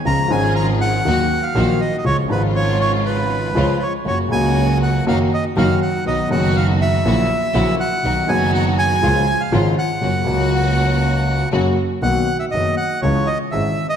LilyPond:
<<
  \new Staff \with { instrumentName = "Bandoneon" } { \time 4/4 \key fis \major \tempo 4 = 120 ais''8 gis''8 ais''8 fis''4~ fis''16 eis''8. dis''16. dis''32 | cis''8 b'8 cis''8 cis''8 b'4. cis''8 | cis''8 gis''4 fis''8 eis''8 dis''8 eis''8 fis''8 | dis''8 fis''8 eis''8 e''2 fis''8~ |
fis''8 gis''8 fis''8 gis''4~ gis''16 eis''8. fis''8~ | fis''2. r4 | \key b \major fis''8. e''16 dis''8 fis''8 cis''8 dis''8 e''8. dis''16 | }
  \new Staff \with { instrumentName = "String section" } { \time 4/4 \key fis \major <cis' eis' gis'>8 <cis' eis' gis'>4. <ais dis' fis'>8 r8 <ais dis' fis'>8 r8 | <gis cis' eis'>8 <gis cis' eis'>2~ <gis cis' eis'>8 <gis cis' eis'>8 r8 | <ais cis' fis'>8 <ais cis' fis'>4. <ais dis' fis'>8 r8 <ais dis' fis'>8 r8 | <b dis' fis'>8 <b dis' fis'>4. <ais e' fis'>8 r8 <ais e' fis'>8 r8 |
<b dis' fis'>8 <b dis' fis'>4. <gis cis' eis'>8 r8 <gis cis' eis'>8 r8 | <ais cis' fis'>8 <ais cis' fis'>2~ <ais cis' fis'>8 <ais cis' fis'>8 r8 | \key b \major r1 | }
  \new Staff \with { instrumentName = "Grand piano" } { \clef bass \time 4/4 \key fis \major <cis, cis eis gis cis' gis'>8 <gis,, gis, eis gis cis' gis'>4. <dis, dis fis ais fis'>8 r8 <ais,, ais, dis fis ais fis'>8 r8 | <cis, cis eis gis eis'>8 <gis,, gis, cis eis gis eis'>2~ <gis,, gis, cis eis gis eis'>8 <cis, cis eis gis eis'>8 r8 | <fis, cis fis ais fis'>8 <cis, cis fis ais fis'>4. <fis, dis fis ais fis'>8 r8 <fis, dis fis ais fis'>8 r8 | <b,, b, dis fis b fis'>8 <fis,, fis, dis fis b fis'>4. <ais,, ais, cis fis ais e'>8 r8 <ais,, ais, cis fis ais e'>8 r8 |
<b,, b, dis fis b fis'>8 <fis,, fis, dis fis b fis'>4. <cis, cis eis gis eis'>8 r8 <gis,, gis, cis eis gis eis'>8 r8 | <fis, cis fis ais fis'>8 <cis, cis fis ais fis'>2~ <cis, cis fis ais fis'>8 <fis, cis fis ais fis'>8 r8 | \key b \major <b,, b, dis ais b fis'>8 r8 <fis,, fis, dis ais b fis'>8 r8 <cis, cis e gis cis' gis'>8 r8 <gis,, gis, e gis cis' gis'>8 r8 | }
  \new Staff \with { instrumentName = "Double bass" } { \clef bass \time 4/4 \key fis \major cis,8 gis,,4. dis,8 r8 ais,,8 r8 | cis,8 gis,,2~ gis,,8 cis,8 r8 | fis,,8 cis,4. fis,,8 r8 fis,,8 r8 | b,,8 fis,,4. ais,,8 r8 ais,,8 r8 |
b,,8 fis,,4. cis,8 r8 gis,,8 r8 | fis,,8 cis,2~ cis,8 fis,,8 r8 | \key b \major b,,8 r8 fis,,8 r8 cis,8 r8 gis,,8 r8 | }
>>